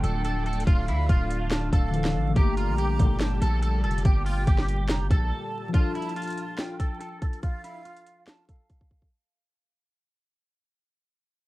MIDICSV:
0, 0, Header, 1, 8, 480
1, 0, Start_track
1, 0, Key_signature, -1, "minor"
1, 0, Tempo, 422535
1, 761, Time_signature, 4, 2, 24, 8
1, 13040, End_track
2, 0, Start_track
2, 0, Title_t, "Flute"
2, 0, Program_c, 0, 73
2, 0, Note_on_c, 0, 79, 96
2, 716, Note_off_c, 0, 79, 0
2, 760, Note_on_c, 0, 77, 127
2, 1675, Note_off_c, 0, 77, 0
2, 1720, Note_on_c, 0, 81, 89
2, 1948, Note_off_c, 0, 81, 0
2, 1962, Note_on_c, 0, 77, 90
2, 2638, Note_off_c, 0, 77, 0
2, 2682, Note_on_c, 0, 82, 127
2, 3596, Note_off_c, 0, 82, 0
2, 3640, Note_on_c, 0, 81, 98
2, 4555, Note_off_c, 0, 81, 0
2, 4599, Note_on_c, 0, 79, 109
2, 5514, Note_off_c, 0, 79, 0
2, 5560, Note_on_c, 0, 82, 82
2, 5788, Note_off_c, 0, 82, 0
2, 5798, Note_on_c, 0, 81, 87
2, 6476, Note_off_c, 0, 81, 0
2, 6519, Note_on_c, 0, 81, 124
2, 7435, Note_off_c, 0, 81, 0
2, 7481, Note_on_c, 0, 79, 91
2, 8138, Note_off_c, 0, 79, 0
2, 8439, Note_on_c, 0, 77, 116
2, 9355, Note_off_c, 0, 77, 0
2, 9403, Note_on_c, 0, 81, 82
2, 9630, Note_off_c, 0, 81, 0
2, 9639, Note_on_c, 0, 77, 80
2, 10317, Note_off_c, 0, 77, 0
2, 13040, End_track
3, 0, Start_track
3, 0, Title_t, "Clean electric guitar"
3, 0, Program_c, 1, 27
3, 41, Note_on_c, 1, 69, 100
3, 257, Note_off_c, 1, 69, 0
3, 280, Note_on_c, 1, 69, 93
3, 496, Note_off_c, 1, 69, 0
3, 525, Note_on_c, 1, 69, 77
3, 739, Note_off_c, 1, 69, 0
3, 758, Note_on_c, 1, 65, 103
3, 975, Note_off_c, 1, 65, 0
3, 1005, Note_on_c, 1, 64, 85
3, 1219, Note_off_c, 1, 64, 0
3, 1241, Note_on_c, 1, 65, 88
3, 1918, Note_off_c, 1, 65, 0
3, 1962, Note_on_c, 1, 69, 91
3, 2638, Note_off_c, 1, 69, 0
3, 2682, Note_on_c, 1, 67, 104
3, 2897, Note_off_c, 1, 67, 0
3, 2922, Note_on_c, 1, 65, 87
3, 3137, Note_off_c, 1, 65, 0
3, 3161, Note_on_c, 1, 67, 94
3, 3838, Note_off_c, 1, 67, 0
3, 3884, Note_on_c, 1, 69, 95
3, 4099, Note_off_c, 1, 69, 0
3, 4117, Note_on_c, 1, 69, 82
3, 4335, Note_off_c, 1, 69, 0
3, 4360, Note_on_c, 1, 69, 84
3, 4576, Note_off_c, 1, 69, 0
3, 4605, Note_on_c, 1, 67, 99
3, 4819, Note_off_c, 1, 67, 0
3, 4836, Note_on_c, 1, 65, 78
3, 5054, Note_off_c, 1, 65, 0
3, 5080, Note_on_c, 1, 67, 90
3, 5757, Note_off_c, 1, 67, 0
3, 5803, Note_on_c, 1, 69, 82
3, 6479, Note_off_c, 1, 69, 0
3, 6520, Note_on_c, 1, 65, 103
3, 6736, Note_off_c, 1, 65, 0
3, 6761, Note_on_c, 1, 64, 86
3, 6977, Note_off_c, 1, 64, 0
3, 7001, Note_on_c, 1, 65, 86
3, 7678, Note_off_c, 1, 65, 0
3, 7721, Note_on_c, 1, 69, 92
3, 7937, Note_off_c, 1, 69, 0
3, 7959, Note_on_c, 1, 69, 87
3, 8176, Note_off_c, 1, 69, 0
3, 8199, Note_on_c, 1, 69, 74
3, 8416, Note_off_c, 1, 69, 0
3, 8441, Note_on_c, 1, 65, 89
3, 8657, Note_off_c, 1, 65, 0
3, 8678, Note_on_c, 1, 64, 76
3, 8895, Note_off_c, 1, 64, 0
3, 8920, Note_on_c, 1, 65, 83
3, 9597, Note_off_c, 1, 65, 0
3, 9641, Note_on_c, 1, 69, 87
3, 10318, Note_off_c, 1, 69, 0
3, 13040, End_track
4, 0, Start_track
4, 0, Title_t, "Synth keys"
4, 0, Program_c, 2, 88
4, 0, Control_c, 2, 64, 127
4, 0, Note_on_c, 2, 50, 71
4, 0, Note_on_c, 2, 53, 65
4, 0, Note_on_c, 2, 65, 65
4, 0, Note_on_c, 2, 69, 77
4, 2121, Note_off_c, 2, 50, 0
4, 2143, Note_off_c, 2, 53, 0
4, 2164, Note_off_c, 2, 65, 0
4, 2165, Note_on_c, 2, 50, 55
4, 2185, Note_off_c, 2, 69, 0
4, 2186, Note_on_c, 2, 53, 51
4, 2207, Note_on_c, 2, 52, 50
4, 2229, Note_on_c, 2, 69, 58
4, 2603, Note_off_c, 2, 50, 0
4, 2616, Note_on_c, 2, 50, 66
4, 2659, Note_on_c, 2, 58, 63
4, 2673, Note_off_c, 2, 53, 0
4, 2684, Note_off_c, 2, 52, 0
4, 2695, Note_off_c, 2, 69, 0
4, 2698, Control_c, 2, 64, 0
4, 2701, Note_on_c, 2, 67, 66
4, 2744, Note_on_c, 2, 57, 75
4, 2906, Control_c, 2, 64, 127
4, 6443, Note_off_c, 2, 50, 0
4, 6462, Note_on_c, 2, 53, 66
4, 6464, Note_off_c, 2, 58, 0
4, 6486, Note_off_c, 2, 67, 0
4, 6504, Note_on_c, 2, 62, 61
4, 6507, Note_off_c, 2, 57, 0
4, 6536, Control_c, 2, 64, 0
4, 6547, Note_on_c, 2, 65, 64
4, 6589, Note_on_c, 2, 69, 73
4, 6740, Control_c, 2, 64, 127
4, 10286, Note_off_c, 2, 53, 0
4, 10307, Note_off_c, 2, 62, 0
4, 10328, Note_off_c, 2, 65, 0
4, 10350, Note_off_c, 2, 69, 0
4, 10374, Control_c, 2, 64, 0
4, 13040, End_track
5, 0, Start_track
5, 0, Title_t, "Analog synth pad"
5, 0, Program_c, 3, 89
5, 0, Note_on_c, 3, 50, 81
5, 0, Note_on_c, 3, 57, 75
5, 0, Note_on_c, 3, 62, 89
5, 2642, Note_off_c, 3, 57, 0
5, 2642, Note_off_c, 3, 62, 0
5, 2643, Note_off_c, 3, 50, 0
5, 2681, Note_on_c, 3, 46, 80
5, 2681, Note_on_c, 3, 55, 74
5, 2681, Note_on_c, 3, 67, 89
5, 6482, Note_off_c, 3, 46, 0
5, 6482, Note_off_c, 3, 55, 0
5, 6482, Note_off_c, 3, 67, 0
5, 13040, End_track
6, 0, Start_track
6, 0, Title_t, "String section"
6, 0, Program_c, 4, 48
6, 3400, Note_on_c, 4, 45, 96
6, 3401, Note_on_c, 4, 34, 105
6, 3401, Note_on_c, 4, 50, 113
6, 3605, Note_off_c, 4, 34, 0
6, 3605, Note_off_c, 4, 45, 0
6, 3605, Note_off_c, 4, 50, 0
6, 13040, End_track
7, 0, Start_track
7, 0, Title_t, "808-style bass"
7, 0, Program_c, 5, 38
7, 41, Note_on_c, 5, 26, 106
7, 732, Note_off_c, 5, 26, 0
7, 761, Note_on_c, 5, 26, 107
7, 1001, Note_on_c, 5, 38, 101
7, 1018, Note_off_c, 5, 26, 0
7, 1229, Note_off_c, 5, 38, 0
7, 1241, Note_on_c, 5, 26, 109
7, 1932, Note_off_c, 5, 26, 0
7, 1962, Note_on_c, 5, 26, 109
7, 2441, Note_on_c, 5, 33, 104
7, 2459, Note_off_c, 5, 26, 0
7, 2669, Note_off_c, 5, 33, 0
7, 2682, Note_on_c, 5, 31, 111
7, 3048, Note_on_c, 5, 34, 96
7, 3065, Note_off_c, 5, 31, 0
7, 3383, Note_off_c, 5, 34, 0
7, 3401, Note_on_c, 5, 31, 104
7, 3862, Note_off_c, 5, 31, 0
7, 3881, Note_on_c, 5, 34, 104
7, 4360, Note_on_c, 5, 29, 104
7, 4377, Note_off_c, 5, 34, 0
7, 4589, Note_off_c, 5, 29, 0
7, 4601, Note_on_c, 5, 31, 114
7, 5062, Note_off_c, 5, 31, 0
7, 5080, Note_on_c, 5, 31, 106
7, 5560, Note_on_c, 5, 29, 103
7, 5577, Note_off_c, 5, 31, 0
7, 5687, Note_on_c, 5, 31, 98
7, 5704, Note_off_c, 5, 29, 0
7, 5795, Note_off_c, 5, 31, 0
7, 5801, Note_on_c, 5, 34, 104
7, 6041, Note_off_c, 5, 34, 0
7, 13040, End_track
8, 0, Start_track
8, 0, Title_t, "Drums"
8, 42, Note_on_c, 9, 42, 99
8, 156, Note_off_c, 9, 42, 0
8, 280, Note_on_c, 9, 42, 82
8, 393, Note_off_c, 9, 42, 0
8, 521, Note_on_c, 9, 42, 44
8, 601, Note_off_c, 9, 42, 0
8, 601, Note_on_c, 9, 42, 57
8, 681, Note_off_c, 9, 42, 0
8, 681, Note_on_c, 9, 42, 72
8, 761, Note_off_c, 9, 42, 0
8, 761, Note_on_c, 9, 36, 120
8, 761, Note_on_c, 9, 42, 61
8, 875, Note_off_c, 9, 36, 0
8, 875, Note_off_c, 9, 42, 0
8, 1001, Note_on_c, 9, 42, 82
8, 1115, Note_off_c, 9, 42, 0
8, 1240, Note_on_c, 9, 36, 100
8, 1241, Note_on_c, 9, 42, 76
8, 1354, Note_off_c, 9, 36, 0
8, 1354, Note_off_c, 9, 42, 0
8, 1483, Note_on_c, 9, 42, 83
8, 1596, Note_off_c, 9, 42, 0
8, 1717, Note_on_c, 9, 39, 89
8, 1721, Note_on_c, 9, 38, 111
8, 1723, Note_on_c, 9, 42, 87
8, 1831, Note_off_c, 9, 39, 0
8, 1835, Note_off_c, 9, 38, 0
8, 1836, Note_off_c, 9, 42, 0
8, 1962, Note_on_c, 9, 36, 97
8, 1963, Note_on_c, 9, 42, 87
8, 2075, Note_off_c, 9, 36, 0
8, 2077, Note_off_c, 9, 42, 0
8, 2200, Note_on_c, 9, 42, 86
8, 2314, Note_off_c, 9, 42, 0
8, 2325, Note_on_c, 9, 39, 90
8, 2329, Note_on_c, 9, 38, 108
8, 2439, Note_off_c, 9, 39, 0
8, 2443, Note_off_c, 9, 38, 0
8, 2681, Note_on_c, 9, 36, 120
8, 2682, Note_on_c, 9, 42, 58
8, 2795, Note_off_c, 9, 36, 0
8, 2795, Note_off_c, 9, 42, 0
8, 2922, Note_on_c, 9, 42, 78
8, 3035, Note_off_c, 9, 42, 0
8, 3161, Note_on_c, 9, 42, 72
8, 3274, Note_off_c, 9, 42, 0
8, 3401, Note_on_c, 9, 36, 100
8, 3403, Note_on_c, 9, 42, 82
8, 3514, Note_off_c, 9, 36, 0
8, 3516, Note_off_c, 9, 42, 0
8, 3637, Note_on_c, 9, 39, 87
8, 3641, Note_on_c, 9, 38, 111
8, 3642, Note_on_c, 9, 42, 91
8, 3751, Note_off_c, 9, 39, 0
8, 3755, Note_off_c, 9, 38, 0
8, 3756, Note_off_c, 9, 42, 0
8, 3882, Note_on_c, 9, 42, 95
8, 3996, Note_off_c, 9, 42, 0
8, 4119, Note_on_c, 9, 42, 87
8, 4233, Note_off_c, 9, 42, 0
8, 4360, Note_on_c, 9, 42, 44
8, 4441, Note_off_c, 9, 42, 0
8, 4441, Note_on_c, 9, 42, 58
8, 4521, Note_off_c, 9, 42, 0
8, 4521, Note_on_c, 9, 42, 75
8, 4601, Note_off_c, 9, 42, 0
8, 4601, Note_on_c, 9, 36, 122
8, 4601, Note_on_c, 9, 42, 60
8, 4714, Note_off_c, 9, 36, 0
8, 4714, Note_off_c, 9, 42, 0
8, 4841, Note_on_c, 9, 46, 83
8, 4954, Note_off_c, 9, 46, 0
8, 5080, Note_on_c, 9, 36, 101
8, 5080, Note_on_c, 9, 42, 75
8, 5193, Note_off_c, 9, 36, 0
8, 5193, Note_off_c, 9, 42, 0
8, 5207, Note_on_c, 9, 38, 75
8, 5321, Note_off_c, 9, 38, 0
8, 5321, Note_on_c, 9, 42, 80
8, 5435, Note_off_c, 9, 42, 0
8, 5556, Note_on_c, 9, 39, 88
8, 5560, Note_on_c, 9, 38, 110
8, 5561, Note_on_c, 9, 42, 90
8, 5669, Note_off_c, 9, 39, 0
8, 5673, Note_off_c, 9, 38, 0
8, 5675, Note_off_c, 9, 42, 0
8, 5801, Note_on_c, 9, 36, 98
8, 5801, Note_on_c, 9, 42, 86
8, 5914, Note_off_c, 9, 36, 0
8, 5915, Note_off_c, 9, 42, 0
8, 6520, Note_on_c, 9, 42, 60
8, 6521, Note_on_c, 9, 36, 116
8, 6634, Note_off_c, 9, 36, 0
8, 6634, Note_off_c, 9, 42, 0
8, 6760, Note_on_c, 9, 42, 46
8, 6840, Note_off_c, 9, 42, 0
8, 6840, Note_on_c, 9, 42, 53
8, 6920, Note_off_c, 9, 42, 0
8, 6920, Note_on_c, 9, 42, 57
8, 7000, Note_off_c, 9, 42, 0
8, 7000, Note_on_c, 9, 42, 70
8, 7064, Note_off_c, 9, 42, 0
8, 7064, Note_on_c, 9, 42, 64
8, 7081, Note_off_c, 9, 42, 0
8, 7081, Note_on_c, 9, 42, 67
8, 7128, Note_off_c, 9, 42, 0
8, 7128, Note_on_c, 9, 42, 53
8, 7160, Note_off_c, 9, 42, 0
8, 7160, Note_on_c, 9, 42, 76
8, 7184, Note_off_c, 9, 42, 0
8, 7184, Note_on_c, 9, 42, 43
8, 7242, Note_off_c, 9, 42, 0
8, 7242, Note_on_c, 9, 42, 77
8, 7355, Note_off_c, 9, 42, 0
8, 7477, Note_on_c, 9, 39, 86
8, 7481, Note_on_c, 9, 38, 105
8, 7482, Note_on_c, 9, 42, 88
8, 7591, Note_off_c, 9, 39, 0
8, 7595, Note_off_c, 9, 38, 0
8, 7596, Note_off_c, 9, 42, 0
8, 7721, Note_on_c, 9, 36, 91
8, 7723, Note_on_c, 9, 42, 94
8, 7835, Note_off_c, 9, 36, 0
8, 7836, Note_off_c, 9, 42, 0
8, 7959, Note_on_c, 9, 42, 81
8, 8073, Note_off_c, 9, 42, 0
8, 8201, Note_on_c, 9, 42, 59
8, 8202, Note_on_c, 9, 36, 94
8, 8315, Note_off_c, 9, 36, 0
8, 8315, Note_off_c, 9, 42, 0
8, 8328, Note_on_c, 9, 42, 57
8, 8441, Note_off_c, 9, 42, 0
8, 8441, Note_on_c, 9, 36, 114
8, 8441, Note_on_c, 9, 42, 58
8, 8555, Note_off_c, 9, 36, 0
8, 8555, Note_off_c, 9, 42, 0
8, 8681, Note_on_c, 9, 42, 79
8, 8794, Note_off_c, 9, 42, 0
8, 8921, Note_on_c, 9, 42, 61
8, 9034, Note_off_c, 9, 42, 0
8, 9048, Note_on_c, 9, 42, 60
8, 9162, Note_off_c, 9, 42, 0
8, 9162, Note_on_c, 9, 42, 78
8, 9275, Note_off_c, 9, 42, 0
8, 9397, Note_on_c, 9, 39, 84
8, 9401, Note_on_c, 9, 38, 104
8, 9402, Note_on_c, 9, 42, 84
8, 9510, Note_off_c, 9, 39, 0
8, 9514, Note_off_c, 9, 38, 0
8, 9516, Note_off_c, 9, 42, 0
8, 9641, Note_on_c, 9, 36, 91
8, 9642, Note_on_c, 9, 42, 83
8, 9755, Note_off_c, 9, 36, 0
8, 9756, Note_off_c, 9, 42, 0
8, 9879, Note_on_c, 9, 42, 79
8, 9881, Note_on_c, 9, 36, 86
8, 9993, Note_off_c, 9, 42, 0
8, 9994, Note_off_c, 9, 36, 0
8, 10009, Note_on_c, 9, 36, 98
8, 10121, Note_off_c, 9, 36, 0
8, 10121, Note_on_c, 9, 36, 89
8, 10235, Note_off_c, 9, 36, 0
8, 10248, Note_on_c, 9, 36, 98
8, 10361, Note_off_c, 9, 36, 0
8, 13040, End_track
0, 0, End_of_file